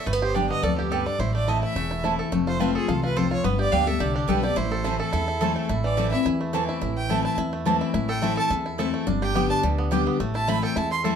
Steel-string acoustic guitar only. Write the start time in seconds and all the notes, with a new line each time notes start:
0.07 G2
0.35 D3 G3 B3 G4
0.63 F2
0.92 G2
1.20 A2
1.47 E3 A3 C4 E4
1.76 E2
2.04 E3 A3 C4 E4
2.32 F2
2.60 F3 A3 C4 F4
2.89 E2
3.17 F2
3.44 G2
3.72 D3 G3 B3 G4
3.86 B3 G4
4.00 D3
4.28 D3 G3 B3 G4
4.42 B3 G4
4.56 A2
4.84 E3 A3 C4 E4
5.13 E2
5.41 E3 A3 C4 E4
5.69 A2
5.97 E3 A3 C4 E4
6.12 C4 E4
6.26 E2
6.53 E3 A3 C4 E4
6.82 A2
7.09 E3 A3 C4 E4
7.38 E2
7.65 E3 A3 C4 E4
7.94 A2
8.22 E3 A3 C4 E4
8.51 E2
8.78 E3 A3 C4 E4
9.07 G2
9.35 D3 G3 B3 G4
9.63 D3
9.91 D3 G3 B3 G4
10.20 A2
10.48 E3 A3 C4 E4
10.77 E2
11.04 E3 A3 C4 E4